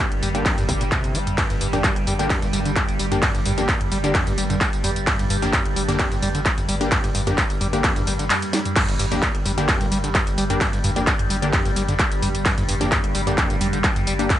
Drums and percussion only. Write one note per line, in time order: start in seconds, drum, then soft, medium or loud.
0.12 closed hi-hat medium
0.23 mid tom medium
0.23 open hi-hat loud
0.23 tambourine medium
0.35 closed hi-hat medium
0.35 tambourine soft
0.46 kick loud
0.46 clap loud
0.46 closed hi-hat medium
0.46 ride medium
0.46 tambourine soft
0.58 closed hi-hat soft
0.58 mid tom medium
0.58 tambourine soft
0.69 kick medium
0.69 open hi-hat loud
0.69 tambourine medium
0.81 closed hi-hat medium
0.81 tambourine soft
0.92 kick loud
0.92 clap loud
0.92 closed hi-hat medium
0.92 mid tom medium
0.92 ride medium
0.92 tambourine soft
1.04 closed hi-hat medium
1.04 tambourine soft
1.15 open hi-hat loud
1.15 tambourine medium
1.27 closed hi-hat medium
1.27 mid tom medium
1.27 tambourine soft
1.38 kick loud
1.38 clap loud
1.38 closed hi-hat medium
1.38 ride medium
1.38 tambourine soft
1.50 closed hi-hat medium
1.50 tambourine soft
1.61 open hi-hat loud
1.61 tambourine medium
1.73 closed hi-hat soft
1.73 mid tom medium
1.73 tambourine soft
1.84 kick loud
1.84 clap loud
1.84 closed hi-hat medium
1.84 ride medium
1.84 tambourine soft
1.96 closed hi-hat medium
2.07 mid tom medium
2.07 open hi-hat loud
2.07 tambourine medium
2.19 closed hi-hat medium
2.19 tambourine soft
2.30 kick loud
2.30 clap loud
2.30 closed hi-hat medium
2.30 ride medium
2.30 tambourine soft
2.42 closed hi-hat medium
2.42 mid tom medium
2.42 tambourine soft
2.53 open hi-hat loud
2.53 tambourine medium
2.65 closed hi-hat medium
2.65 tambourine soft
2.76 kick loud
2.76 clap loud
2.76 closed hi-hat medium
2.76 mid tom medium
2.76 ride medium
2.76 tambourine soft
2.89 closed hi-hat medium
2.89 tambourine soft
2.99 open hi-hat loud
2.99 tambourine medium
3.12 closed hi-hat medium
3.12 mid tom medium
3.12 tambourine soft
3.22 kick loud
3.22 clap loud
3.22 closed hi-hat medium
3.22 ride medium
3.22 tambourine soft
3.35 closed hi-hat medium
3.35 tambourine soft
3.46 mid tom medium
3.46 open hi-hat loud
3.46 tambourine medium
3.58 closed hi-hat medium
3.58 tambourine soft
3.69 kick loud
3.69 clap loud
3.69 closed hi-hat medium
3.69 ride medium
3.69 tambourine soft
3.81 closed hi-hat medium
3.81 mid tom medium
3.92 open hi-hat medium
3.92 tambourine medium
4.04 closed hi-hat soft
4.04 tambourine soft
4.15 kick loud
4.15 clap loud
4.15 closed hi-hat medium
4.15 mid tom medium
4.15 ride medium
4.15 tambourine soft
4.27 closed hi-hat medium
4.27 tambourine soft
4.38 open hi-hat loud
4.38 tambourine medium
4.50 closed hi-hat medium
4.50 mid tom medium
4.50 tambourine soft
4.61 kick loud
4.61 clap loud
4.61 closed hi-hat medium
4.61 ride medium
4.61 tambourine soft
4.73 closed hi-hat medium
4.73 tambourine soft
4.84 mid tom medium
4.84 open hi-hat loud
4.84 tambourine medium
4.96 closed hi-hat medium
4.96 tambourine soft
5.07 kick loud
5.07 clap loud
5.07 closed hi-hat medium
5.07 ride medium
5.07 tambourine soft
5.19 closed hi-hat medium
5.19 mid tom medium
5.19 tambourine soft
5.30 open hi-hat loud
5.30 tambourine medium
5.42 closed hi-hat soft
5.42 tambourine soft
5.53 kick loud
5.53 clap loud
5.53 closed hi-hat medium
5.53 mid tom medium
5.53 ride medium
5.53 tambourine soft
5.66 closed hi-hat medium
5.76 open hi-hat loud
5.76 tambourine medium
5.89 closed hi-hat medium
5.89 mid tom medium
5.89 tambourine soft
5.99 kick loud
5.99 clap loud
5.99 closed hi-hat medium
5.99 ride medium
5.99 tambourine soft
6.12 closed hi-hat soft
6.12 tambourine soft
6.22 mid tom medium
6.22 open hi-hat loud
6.22 tambourine medium
6.35 closed hi-hat medium
6.35 tambourine soft
6.46 kick loud
6.46 clap loud
6.46 closed hi-hat medium
6.46 ride medium
6.46 tambourine soft
6.58 closed hi-hat medium
6.58 mid tom medium
6.58 tambourine soft
6.69 open hi-hat loud
6.69 tambourine medium
6.81 closed hi-hat medium
6.81 tambourine soft
6.92 kick loud
6.92 clap loud
6.92 closed hi-hat medium
6.92 mid tom medium
6.92 ride medium
6.92 tambourine soft
7.04 closed hi-hat medium
7.04 tambourine soft
7.15 open hi-hat loud
7.15 tambourine medium
7.27 closed hi-hat medium
7.27 mid tom medium
7.27 tambourine soft
7.38 kick loud
7.38 clap loud
7.38 closed hi-hat medium
7.38 ride medium
7.38 tambourine soft
7.50 closed hi-hat medium
7.50 tambourine soft
7.61 mid tom medium
7.61 open hi-hat loud
7.61 tambourine medium
7.73 closed hi-hat medium
7.73 tambourine soft
7.84 kick loud
7.84 clap loud
7.84 closed hi-hat medium
7.84 ride medium
7.84 tambourine soft
7.96 closed hi-hat medium
7.96 mid tom medium
7.96 tambourine soft
8.07 open hi-hat loud
8.07 tambourine medium
8.19 closed hi-hat medium
8.19 tambourine soft
8.30 clap loud
8.30 closed hi-hat medium
8.30 mid tom medium
8.30 ride medium
8.30 tambourine soft
8.42 closed hi-hat medium
8.42 tambourine soft
8.53 snare loud
8.53 open hi-hat loud
8.53 tambourine medium
8.65 closed hi-hat medium
8.65 mid tom medium
8.65 tambourine soft
8.76 kick loud
8.76 clap loud
8.76 closed hi-hat medium
8.76 ride medium
8.76 tambourine soft
8.76 crash medium
8.89 closed hi-hat medium
8.89 tambourine soft
8.99 open hi-hat loud
8.99 tambourine medium
9.12 closed hi-hat medium
9.12 mid tom medium
9.12 tambourine soft
9.22 kick loud
9.22 clap loud
9.22 closed hi-hat medium
9.22 ride medium
9.22 tambourine soft
9.35 closed hi-hat medium
9.46 mid tom medium
9.46 open hi-hat loud
9.46 tambourine medium
9.58 closed hi-hat medium
9.58 tambourine soft
9.69 kick loud
9.69 clap loud
9.69 closed hi-hat medium
9.69 ride medium
9.69 tambourine soft
9.81 closed hi-hat medium
9.81 mid tom medium
9.81 tambourine soft
9.92 open hi-hat loud
9.92 tambourine medium
10.04 closed hi-hat medium
10.04 tambourine soft
10.15 kick loud
10.15 clap loud
10.15 closed hi-hat medium
10.15 mid tom medium
10.15 ride medium
10.15 tambourine soft
10.27 closed hi-hat medium
10.27 tambourine soft
10.38 open hi-hat loud
10.38 tambourine medium
10.50 closed hi-hat medium
10.50 mid tom medium
10.50 tambourine soft
10.61 kick loud
10.61 clap loud
10.61 closed hi-hat medium
10.61 ride medium
10.61 tambourine soft
10.73 closed hi-hat medium
10.73 tambourine soft
10.84 mid tom medium
10.84 open hi-hat loud
10.84 tambourine medium
10.96 closed hi-hat medium
10.96 tambourine soft
11.07 kick loud
11.07 clap loud
11.07 closed hi-hat medium
11.07 ride medium
11.07 tambourine soft
11.19 closed hi-hat medium
11.19 mid tom medium
11.30 open hi-hat loud
11.30 tambourine medium
11.42 closed hi-hat medium
11.42 tambourine soft
11.53 kick loud
11.53 clap loud
11.53 closed hi-hat medium
11.53 mid tom medium
11.53 ride medium
11.53 tambourine soft
11.65 closed hi-hat medium
11.65 tambourine soft
11.76 open hi-hat loud
11.76 tambourine medium
11.89 closed hi-hat medium
11.89 mid tom medium
11.89 tambourine soft
11.99 kick loud
11.99 clap loud
11.99 closed hi-hat medium
11.99 ride medium
11.99 tambourine soft
12.12 closed hi-hat medium
12.12 tambourine soft
12.22 mid tom medium
12.22 open hi-hat loud
12.22 tambourine medium
12.35 closed hi-hat medium
12.35 tambourine soft
12.46 kick loud
12.46 clap loud
12.46 closed hi-hat medium
12.46 ride medium
12.46 tambourine soft
12.58 closed hi-hat medium
12.58 mid tom medium
12.58 tambourine soft
12.69 open hi-hat loud
12.69 tambourine medium
12.81 closed hi-hat medium
12.81 tambourine soft
12.92 kick loud
12.92 clap loud
12.92 closed hi-hat medium
12.92 mid tom medium
12.92 ride medium
12.92 tambourine soft
13.04 closed hi-hat medium
13.15 open hi-hat loud
13.15 tambourine medium
13.27 closed hi-hat medium
13.27 mid tom medium
13.27 tambourine soft
13.38 kick loud
13.38 clap loud
13.38 closed hi-hat medium
13.38 ride medium
13.38 tambourine soft
13.50 closed hi-hat medium
13.50 tambourine soft
13.61 mid tom medium
13.61 open hi-hat loud
13.61 tambourine medium
13.73 closed hi-hat medium
13.73 tambourine soft
13.84 kick loud
13.84 clap loud
13.84 closed hi-hat medium
13.84 ride medium
13.84 tambourine soft
13.96 closed hi-hat medium
13.96 mid tom medium
13.96 tambourine soft
14.07 open hi-hat loud
14.07 tambourine medium
14.19 closed hi-hat medium
14.19 tambourine soft
14.30 kick loud
14.30 clap loud
14.30 closed hi-hat medium
14.30 mid tom medium
14.30 ride medium
14.30 tambourine soft